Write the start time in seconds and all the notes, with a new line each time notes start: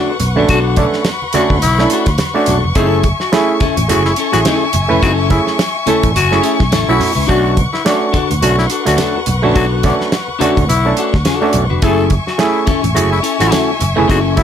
Already playing: A3 C#4 D4 F#4 A4 B4 F#5 C#6
0.20 B1, muted clean electric guitar stroke, closed hi-hat, low conga
0.36 A#1 A3 C#4 D4 F#4 A4 B4, high conga
0.49 B1 D4 F#4 A4 B5, kick, closed hi-hat
0.76 A3 C#4 D4 A4, kick, closed hi-hat, high conga
0.93 muted clean electric guitar stroke, snare
1.05 snare, closed hi-hat, muted conga
1.22 muted clean electric guitar stroke, muted conga
1.33 A3 C#4 D4 F#4 A4, muted fingered electric bass stroke, closed hi-hat, high conga
1.50 D2, muted clean electric guitar stroke, kick, low conga
1.62 B1 E4, muted clean electric guitar stroke, closed hi-hat, muted conga, high conga
1.79 A3 C#4 D4 E4, snare
1.90 D4 F#4 A4, closed hi-hat
2.06 D2, muted clean electric guitar stroke, kick, snare, closed hi-hat
2.18 muted clean electric guitar stroke, snare, closed hi-hat, muted conga, high conga
2.34 A3 C#4 D4 F#4, muted conga
2.46 B1 D4 F#4 A4, closed hi-hat, low conga
2.63 F1, muted clean electric guitar stroke, high conga
2.75 F#1 A3 C4 C#4 D#4 E4 G#4 A4 E5 G#5, kick, closed hi-hat
2.87 C#4 E4 A4
2.92 muted conga
3.03 kick, closed hi-hat, high conga
3.20 F#4, muted clean electric guitar stroke, snare
3.32 A3 C#4 E4 G#4, snare, closed hi-hat, muted conga
3.48 muted clean electric guitar stroke
3.60 C#4 E4 A4, muted fingered electric bass stroke, kick, closed hi-hat, high conga
3.77 A1, muted clean electric guitar stroke, closed hi-hat, low conga
3.88 F#1 A3 C#4 E4 F#4 G#4, muted clean electric guitar stroke, closed hi-hat, high conga
4.05 E4, snare
4.16 C#4 E4 A4, closed hi-hat
4.32 A1 A3 C#4 E4 F#4 G#4, snare, closed hi-hat
4.45 C#4 E4 A4, snare, closed hi-hat, high conga
4.73 F#1, muted clean electric guitar stroke, closed hi-hat, low conga
4.88 F1 A3 C#4 E4 B4, high conga
5.03 F#1 C4 D#4 F#4 G#4, kick, closed hi-hat
5.14 C#4 E4 A4
5.29 A3 C#4 E4 G#4, kick, closed hi-hat, high conga
5.47 muted clean electric guitar stroke, snare
5.59 snare, closed hi-hat
5.75 muted clean electric guitar stroke
5.86 A3 C#4 E4 A4, muted fingered electric bass stroke, closed hi-hat, high conga
6.03 A1, muted clean electric guitar stroke, kick, closed hi-hat, low conga
6.16 F#1 F#4, closed hi-hat, muted conga, high conga
6.30 A3 C#4 E4 G#4, muted clean electric guitar stroke, snare
6.42 C#4 E4 A4, closed hi-hat
6.59 B1, muted clean electric guitar stroke, kick, snare
6.71 A1 C#4 E4 A4, snare, closed hi-hat, muted conga, high conga
6.87 B1 A3 C#4 E4 F#4, muted conga
6.99 muted clean electric guitar stroke, open hi-hat, low conga
7.15 C#2 C#4 E4 B4, high conga
7.27 B1 A3 C#4 D4 F#4 A4 B4 F#5, kick, closed hi-hat
7.45 muted conga
7.57 kick, closed hi-hat, high conga
7.73 E4, muted clean electric guitar stroke, snare
7.85 A3 C#4 D4 F#4, snare, closed hi-hat
8.01 muted clean electric guitar stroke
8.13 D4 F#4 A4, muted fingered electric bass stroke, kick, closed hi-hat, high conga
8.29 D2, muted clean electric guitar stroke, closed hi-hat, low conga
8.41 B1 A3 C#4 D4 F#4, muted clean electric guitar stroke, closed hi-hat, high conga
8.58 E4, snare, muted conga
8.70 D4 F#4 A4, closed hi-hat
8.85 D2 A3 C#4 D4 F#4, muted clean electric guitar stroke, snare, closed hi-hat
8.97 D4 F#4 A4, snare, closed hi-hat, muted conga, high conga
9.14 muted conga
9.26 B1, muted clean electric guitar stroke, closed hi-hat, low conga
9.42 A#1 A3 C#4 D4 F#4 B4, high conga
9.54 B1 D4 F#4 A4, kick, closed hi-hat
9.72 muted conga
9.83 A3 C#4 D4 F#4, kick, closed hi-hat, high conga
10.00 muted clean electric guitar stroke, snare
10.12 snare, closed hi-hat
10.27 muted clean electric guitar stroke, muted conga
10.39 A3 C#4 D4 F#4 A4, muted fingered electric bass stroke, closed hi-hat, high conga
10.57 D2, muted clean electric guitar stroke, kick, closed hi-hat, low conga
10.69 B1 E4, muted clean electric guitar stroke, closed hi-hat, muted conga, high conga
10.85 A3 C#4 D4 A4, muted conga
10.97 D4 F#4 A4, closed hi-hat
11.14 D2, muted clean electric guitar stroke, kick, snare
11.25 D4 F#4 A4, snare, closed hi-hat, muted conga, high conga
11.40 A3 C#4 D4 F#4, muted conga
11.53 B1, muted clean electric guitar stroke, closed hi-hat, low conga
11.70 F1 D4 F#4 B4, high conga
11.82 F#1 A3 C#4 E4 G#4 A4 E5 G#5 C#6, kick, closed hi-hat, muted conga
12.10 kick, closed hi-hat, high conga
12.27 F#4, muted clean electric guitar stroke, snare
12.38 A3 C#4 E4 G#4, snare, closed hi-hat, muted conga
12.55 muted clean electric guitar stroke
12.66 C#4 E4 A4, muted fingered electric bass stroke, kick, closed hi-hat, high conga
12.83 A1, muted clean electric guitar stroke, closed hi-hat, low conga
12.94 F#1 A3 C#4 E4 F#4 G#4, muted clean electric guitar stroke, closed hi-hat, high conga
13.12 E4
13.23 C#4 E4 A4, closed hi-hat
13.38 A1 A3 C#4 E4 F#4, muted clean electric guitar stroke, snare, closed hi-hat
13.51 C#4 E4 A4, snare, closed hi-hat, high conga
13.79 F#1, muted clean electric guitar stroke, closed hi-hat, low conga
13.96 F1 A3 C#4 E4 G#4 B4, high conga
14.08 F#1 C4 D#4 F#4 G#4, kick, closed hi-hat, muted conga
14.19 C#4 E4 A4
14.25 muted conga
14.36 A3 C#4 E4 F#4, kick, closed hi-hat, high conga